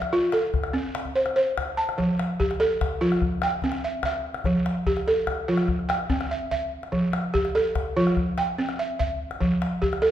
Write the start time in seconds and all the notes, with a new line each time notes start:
Already playing: D5 E5
0.02 calabash thump, calabash click
0.13 F4
0.23 calabash click
0.32 A4, calabash click
0.54 calabash thump, calabash click
0.64 calabash click
0.73 C4
0.95 calabash click
1.05 calabash thump
1.15 C5
1.26 calabash click
1.36 C5, calabash click
1.58 calabash thump, calabash click
1.68 calabash click
1.77 A5
1.89 calabash click
1.98 F3, calabash thump
2.19 calabash click
2.40 G4, calabash thump
2.51 calabash click
2.60 A4, calabash click
2.81 calabash thump, calabash click
3.01 F3 F4
3.12 calabash click
3.22 calabash thump, calabash click
3.32 calabash click
3.42 G5, calabash click
3.62 C4, calabash thump
3.72 calabash click
3.84 E5
4.03 E5, calabash thump, calabash click
4.34 calabash click
4.44 F3, calabash thump
4.66 calabash click
4.86 G4, calabash thump
4.97 calabash click
5.06 A4, calabash click
5.27 calabash thump, calabash click
5.48 F3 F4
5.57 calabash click
5.68 calabash thump, calabash click
5.79 calabash click
5.89 G5, calabash click
6.10 C4, calabash thump
6.21 calabash click
6.31 E5
6.51 E5, calabash thump
6.83 calabash click
6.92 F3, calabash thump
7.13 calabash click
7.34 G4, calabash thump
7.45 calabash click
7.55 A4, calabash click
7.75 calabash thump, calabash click
7.97 F3 F4
8.07 calabash click
8.17 calabash thump, calabash click
8.27 calabash click
8.38 G5, calabash click
8.58 C4
8.69 calabash click
8.79 E5
8.99 E5, calabash thump
9.31 calabash click
9.41 F3, calabash thump
9.52 calabash click
9.62 calabash click
9.82 G4, calabash thump
9.93 calabash click
10.02 A4